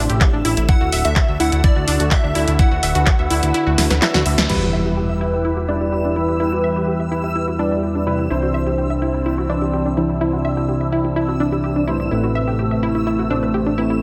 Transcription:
Already playing: supersaw synth C3 A3 C4, synth texture E6
0.10 analog synth bass A1, synth pluck G4, closed hi-hat
0.21 synth pluck G4, kick, clap, closed hi-hat
0.33 analog synth bass A1, synth pluck D4
0.45 analog synth bass A1, synth pluck E4, open hi-hat
0.57 analog synth bass A1, synth pluck E4, closed hi-hat
0.69 supersaw synth D3 D4 F#4 A4, synth pluck E4, digital synth lead F#5, kick, closed hi-hat
0.81 analog synth bass D2, synth pluck F#4
0.92 analog synth bass D1, synth pluck E5, open hi-hat
1.05 analog synth bass D2, synth pluck F#4, digital synth lead E5, closed hi-hat
1.16 synth pluck F#4, kick, clap, closed hi-hat
1.28 analog synth bass D2, synth pluck E5
1.40 analog synth bass D2, synth pluck E4, digital synth lead F#5, open hi-hat
1.52 analog synth bass D2, synth pluck E4, closed hi-hat
1.64 synth pluck E4, digital synth lead D5, kick, closed hi-hat
1.76 analog synth bass D2, synth pluck F#4
1.88 analog synth bass D2, synth pluck D4, open hi-hat
2.00 analog synth bass D2, synth pluck F#4, closed hi-hat
2.11 synth pluck F#4, digital synth lead E5, kick, clap, closed hi-hat
2.24 analog synth bass D2, synth pluck D4
2.35 analog synth bass D2, synth pluck E4, open hi-hat
2.48 analog synth bass D2, synth pluck E4, closed hi-hat
2.59 synth pluck E4, supersaw synth B4, digital synth lead F#5, kick, closed hi-hat
2.71 analog synth bass D2, synth pluck F#4
2.83 analog synth bass D1, synth pluck E5, clap, open hi-hat
2.95 analog synth bass D2, synth pluck F#4, closed hi-hat
3.06 synth pluck F#4, kick, clap, closed hi-hat
3.19 analog synth bass D2, synth pluck E5
3.30 analog synth bass D2, synth pluck E4, open hi-hat
3.43 analog synth bass D2, synth pluck E4, closed hi-hat
3.54 synth pluck E4, closed hi-hat
3.67 analog synth bass D2, synth pluck F#4
3.78 analog synth bass D2, synth pluck E4, snare, open hi-hat
3.90 analog synth bass D2, synth pluck B4, snare, closed hi-hat
4.02 synth pluck E4, snare, clap, closed hi-hat
4.14 analog synth bass D2, synth pluck F#4, snare
4.26 analog synth bass D2, synth pluck E5, open hi-hat
4.38 analog synth bass D2, synth pluck E5, snare, closed hi-hat
4.49 supersaw synth E3 E4 G4 B4, analog polysynth G3 E4 B4, synth pluck E4, synth texture E6, crash, impact
4.62 synth pluck F#4
4.73 synth pluck E5
4.86 synth pluck G4
4.97 synth pluck G4
5.09 synth pluck E5
5.21 synth pluck E4
5.33 synth pluck E4
5.45 synth pluck E4
5.57 synth pluck F#4
5.68 analog polysynth G3 E4 D5, synth pluck D4
5.81 synth pluck G4
5.92 synth pluck G4
6.05 synth pluck D4
6.16 analog polysynth G3 E4 B4, synth pluck E4
6.29 synth pluck E4
6.40 analog polysynth G3 E4 B4, synth pluck E4
6.52 synth pluck F#4
6.64 synth pluck E5
6.76 synth pluck G4
6.88 synth pluck G4
7.00 synth pluck E5
7.12 synth pluck E4
7.24 synth pluck E4
7.35 synth pluck E4
7.48 synth pluck F#4
7.59 analog polysynth G3 E4 D5, synth pluck D4
7.72 synth pluck G4
7.83 synth pluck G4
7.95 synth pluck D4
8.07 analog polysynth C3 G3 E4 B4, synth pluck E4
8.19 synth pluck E4
8.30 analog synth bass C2, supersaw synth C3 C4 D4 E4, analog polysynth E3 D4 C5, synth pluck E4
8.43 synth pluck F#4
8.54 synth pluck E5
8.66 synth pluck G4
8.78 synth pluck G4
8.90 synth pluck E5
9.02 synth pluck E4
9.14 synth pluck E4
9.26 synth pluck E4
9.38 synth pluck F#4
9.49 analog polysynth E3 D4 D5, synth pluck D4
9.62 synth pluck G4
9.73 synth pluck G4
9.86 synth pluck D4
9.97 analog polysynth E3 D4 C5, synth pluck E4
10.09 synth pluck E4
10.21 analog polysynth E3 D4 C5, synth pluck E4
10.33 synth pluck F#4
10.45 synth pluck E5
10.57 synth pluck G4
10.69 synth pluck G4
10.81 synth pluck E5
10.92 synth pluck E4
11.05 synth pluck E4
11.16 synth pluck E4
11.28 synth pluck F#4
11.40 analog polysynth E3 D4 D5, synth pluck D4
11.52 synth pluck G4
11.64 synth pluck G4
11.76 synth pluck D4
11.88 analog polysynth A2 E3 D4 C5, synth pluck E4
12.00 synth pluck E4
12.11 analog synth bass A1, analog polysynth A2 A3 C4 B4, supersaw synth A3, synth pluck E4
12.24 synth pluck F#4
12.35 synth pluck E5
12.47 synth pluck G4
12.59 synth pluck G4
12.71 synth pluck E5
12.83 synth pluck E4
12.95 synth pluck E4
13.07 synth pluck E4
13.19 synth pluck F#4
13.30 analog polysynth A2 A3 C4 C5, synth pluck D4
13.43 synth pluck B4
13.54 synth pluck G4
13.66 synth pluck D4
13.78 analog polysynth A2 A3 C4 B4, synth pluck E4
13.90 synth pluck E4

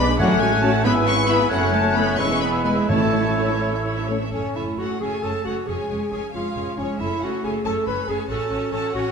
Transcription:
Already playing: double bass section B1, bassoon G#3, clarinet D4, oboe B4, violin section B5, flute section D6
0.08 viola section B3, violin section G#4 B4
0.19 double bass section A1, timpani A2, cello section F#3, bassoon A3, viola section A3 F#4, clarinet C#4, violin section F#4 C#5 F#5, oboe C#5, flute section F#6
0.30 viola section C#4 A4, violin section A4 F#5
0.40 cello section G#3, viola section A3 F#4, violin section F#4 C#5 G#5
0.51 viola section C#4 A4, violin section A4 F#5
0.61 viola section A3 F#4, cello section A3, french horn section C#4 F#4, violin section F#4 C#5 A5
0.73 viola section C#4 A4, violin section A4 F#5
0.84 double bass section G#1, viola section G#3 E4, bassoon B3, cello section B3, clarinet E4, violin section G#4 E5 B5, oboe B4, flute section E6
0.95 viola section B3 G#4, violin section E4 G#5
1.05 viola section G#3 E4, cello section C#4, violin section G#4 E5 C#6
1.16 viola section B3 G#4, violin section E4 G#5
1.27 viola section G#3 E4, french horn section B3 E4, cello section B3, violin section G#4 E5 B5
1.39 viola section B3 G#4, violin section E4 G#5
1.50 double bass section F#1, viola section F#3 C#4, cello section F#3, bassoon A3, clarinet C#4, violin section A4 F#5, oboe C#5, flute section F#6
1.61 viola section A3, violin section F#4 C#5
1.72 viola section F#3 C#4, cello section A3, violin section A4 A5
1.84 viola section A3, violin section F#4 C#5
1.95 viola section F#3 C#4, french horn section A3 C#4, cello section B3, violin section A4 B5
2.07 viola section A3, violin section F#4 C#5
2.17 double bass section E1, bassoon G#3, viola section G#3 E4, cello section C#4, clarinet E4, oboe B4, violin section B4 C#6, flute section E6
2.29 viola section E3 B3, violin section G#4 E5
2.40 viola section G#3 E4, cello section B3, violin section B4 B5
2.52 viola section E3 B3, violin section G#4 E5
2.65 french horn section G#3 B3, viola section G#3 E4, cello section G#3, violin section B4 G#5
2.76 viola section E3 B3, violin section G#4 E5
2.88 double bass section A1, timpani A2, viola section A3 E4, bassoon A3, cello section A3, clarinet E4, violin section C#5 A5, oboe C#5, flute section E6
3.01 viola section E3 C#4, violin section A4 E5
3.13 viola section A3 E4, violin section C#5
3.25 viola section E3 C#4, violin section A4 E5
3.37 french horn section A3 C#4, viola section A3 E4, violin section C#5
3.49 viola section E3 C#4, violin section A4 E5
3.61 viola section A3 E4, violin section C#5
3.73 viola section E3 C#4, violin section A4 E5
3.84 viola section A3 E4, violin section C#5
3.97 viola section E3 C#4, violin section A4 E5
4.08 french horn section A3 C#4, viola section A3 E4, violin section C#5
4.20 viola section E3 C#4, violin section A4 E5
4.31 double bass section F#1, cello section A3, clarinet C#4, viola section C#4 A4, violin section C#5
4.55 double bass section F#1, viola section C#4 A4, clarinet E4, violin section C#5 E5
4.78 double bass section F#1, viola section C#4 A4, clarinet F#4, violin section C#5 F#5
5.00 double bass section F#1, viola section C#4 A4, clarinet G#4, violin section C#5 G#5
5.22 double bass section F#1, viola section C#4 A4, clarinet A4, violin section C#5 A5
5.45 double bass section F#1, viola section C#4 A4, clarinet F#4, violin section C#5 F#5
5.67 double bass section F1, cello section G#3, viola section C#4 G#4, clarinet G#4, violin section C#5 G#5
5.89 double bass section F1, viola section C#4 G#4, violin section C#5
6.11 double bass section F1, viola section C#4 G#4, clarinet G#4, violin section C#5 G#5
6.32 double bass section F1, cello section G#3, viola section C#4 G#4, clarinet F4, violin section C#5 F5
6.54 double bass section F1, viola section C#4 G#4, violin section C#5
6.77 double bass section F1, viola section C#4 G#4, clarinet C#4, violin section C#5
6.99 double bass section F#1, cello section A3, viola section C#4 A4, clarinet E4, violin section C#5 E5
7.21 double bass section F#1, viola section C#4 A4, clarinet F#4, violin section C#5 F#5
7.43 double bass section F#1, viola section C#4 A4, clarinet G#4, violin section C#5 G#5
7.64 double bass section F#1, viola section C#4 A4, clarinet A4, violin section C#5 A5
7.86 double bass section F#1, viola section C#4 A4, clarinet B4, violin section C#5 B5
8.07 double bass section F#1, viola section C#4 A4, clarinet G#4, violin section C#5 G#5
8.29 double bass section A1, viola section C#4 F#4, cello section C#4, clarinet A4, violin section C#5 A5
8.51 double bass section A1, viola section C#4 F#4, violin section C#5
8.71 double bass section A1, viola section C#4 F#4, clarinet A4, violin section C#5 A5
8.93 double bass section A1, viola section C#4 F#4, clarinet F#4, violin section C#5 F#5

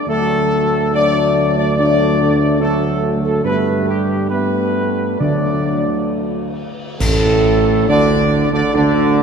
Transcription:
0.06 tuba D2, trombone section F#3 A3, french horn section A3, trumpet section A4
0.93 trombone section F#3 A3, french horn section D4, trumpet section D5
1.57 french horn section D4, trumpet section D5
1.77 trombone section F#3 A3, french horn section D4, trumpet section D5
2.60 trombone section F#3 A3, french horn section A3, trumpet section A4
3.24 french horn section A3, trumpet section A4
3.44 tuba G2, trombone section G3 A3, french horn section B3, trumpet section B4
3.87 french horn section G3, trumpet section G4
4.30 trombone section G3 A3, french horn section B3, trumpet section B4
5.19 tuba D2, timpani D3, trombone section F#3 A3, french horn section D4, trumpet section D5
7.00 tuba A1, trombone section A2, french horn section A3, trumpet section A4, concert bass drum, crash
7.87 tuba D2, trombone section D3, french horn section D4, trumpet section D5
8.52 tuba D2, trombone section D3, french horn section D4, trumpet section D5
8.73 tuba D2, trombone section D3, french horn section D4, trumpet section D5

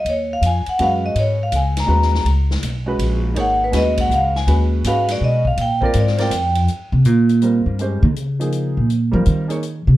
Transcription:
0.05 upright bass D#2, ride
0.09 vibraphone C#5
0.33 vibraphone F5
0.41 upright bass F2, hi-hat pedal, ride
0.46 vibraphone G#5
0.66 vibraphone F#5, muted upright bass stroke, ride
0.79 upright bass F#2, upright piano G#3 C#4 F#4 B4, vibraphone F5, ride
1.06 vibraphone D#5
1.15 upright bass G#2, vibraphone C#5, ride
1.43 vibraphone F5
1.52 upright bass C#2, vibraphone G#5, hi-hat pedal, ride
1.77 vibraphone A#5, snare, ride
1.86 upright bass D#2, upright piano G#3 C#4 F#4 B4
2.02 snare
2.14 snare
2.25 upright bass C#2, ride
2.51 snare
2.62 upright bass B1, hi-hat pedal, ride
2.86 upright piano G#3 C#4 F#4 B4
2.99 upright bass A#1, ride
3.34 upright bass G#1, upright piano A#3 D#4 G#4 C#5, ride
3.40 vibraphone F#5
3.64 vibraphone B4
3.71 upright bass D#2, upright piano G#3 C#4 F#4 B4, snare, hi-hat pedal, ride
3.77 vibraphone D#5
3.98 vibraphone F#5, kick, ride
4.09 upright bass C#2, hi-hat pedal
4.14 vibraphone F5
4.35 vibraphone G#5, snare
4.47 upright bass D#2, upright piano G#3 C#4 F#4 B4, ride
4.84 upright bass G#2, upright piano G#3 C#4 F#4 B4, vibraphone F5, hi-hat pedal, ride
5.08 vibraphone D5, snare, ride
5.21 upright bass B2, vibraphone D#5
5.45 vibraphone F5, kick
5.57 upright bass A#2, ride
5.61 vibraphone G5
5.81 upright piano C4 F4 A#4 D5, kick
5.86 vibraphone A#4
5.94 upright bass G#2, hi-hat pedal, ride
6.00 vibraphone D5
6.07 snare
6.17 upright piano C4 F4 A#4 D5, snare, ride
6.22 vibraphone G5
6.31 upright bass F2, hi-hat pedal, ride
6.55 ride
6.68 closed hi-hat
6.92 upright bass C3
7.05 upright bass A#2, closed hi-hat
7.29 closed hi-hat
7.42 upright piano G3 C4 F4 A#4, closed hi-hat
7.66 upright bass G2
7.79 upright piano G#3 C#4 G4 C5, closed hi-hat
8.03 upright bass D#3
8.16 upright bass C#3, closed hi-hat
8.39 upright piano F3 A#3 D#4 G#4, closed hi-hat
8.52 closed hi-hat
8.77 upright bass A#2
8.90 closed hi-hat
9.12 upright bass F3, upright piano G3 C4 F4 A#4
9.26 upright bass D#3, closed hi-hat
9.48 upright piano A#3 D#4 G#4 C#5, closed hi-hat
9.63 closed hi-hat
9.87 upright bass C3

